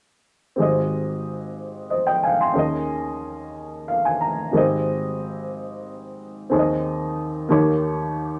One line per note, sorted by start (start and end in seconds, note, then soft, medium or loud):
0.56 2.52 G#1 soft
0.56 2.52 G#2 soft
0.56 2.51 C4 soft
0.56 2.52 G4 soft
0.56 2.53 G#4 soft
0.62 1.89 D#5 soft
1.90 2.06 C5 soft
1.90 2.06 D#5 soft
2.07 2.23 D#5 soft
2.07 2.22 G5 soft
2.23 2.39 F5 soft
2.23 2.39 G#5 soft
2.41 2.72 G#5 soft
2.41 2.72 C6 soft
2.54 4.50 D#2 soft
2.54 4.50 D#3 soft
2.54 4.48 C#4 soft
2.54 4.49 G#4 soft
2.54 4.50 A#4 soft
2.59 4.51 D#5 medium
3.88 4.03 F5 soft
4.05 4.20 G#5 soft
4.21 4.51 A#5 soft
4.51 6.47 G#1 soft
4.51 6.47 G#2 soft
4.51 4.59 A#3 soft
4.51 6.47 G4 soft
4.51 6.48 G#4 soft
4.57 6.48 C4 soft
4.57 6.49 D#5 medium
6.50 7.46 D#2 soft
6.50 7.46 D#3 soft
6.50 7.49 C4 soft
6.50 7.48 D#4 soft
6.50 7.50 G#4 soft
6.50 6.58 C#5 soft
6.59 7.54 D#5 medium
7.49 8.39 D#2 medium
7.49 8.39 D#3 medium
7.49 8.39 A#3 medium
7.49 8.39 D#4 medium
7.49 8.39 G4 soft
7.49 8.39 C#5 medium